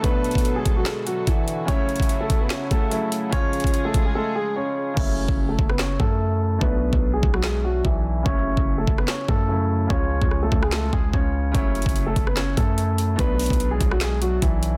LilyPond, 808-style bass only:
\new Staff \with { instrumentName = "808-style bass" } { \clef bass \time 4/4 \key fis \minor \tempo 4 = 146 r1 | r1 | r1 | fis,,8. fis,,8. fis,,4 fis,4. |
b,,8. b,,8. b,,4. b,,4 | fis,,8. fis,,8. fis,,8 r8 fis,4. | cis,8. cis,8. cis,4 cis,8 cis,4 | fis,,8. fis,,8. fis,,4 fis,4. |
b,,8. b,,8. b,,4. b,,4 | }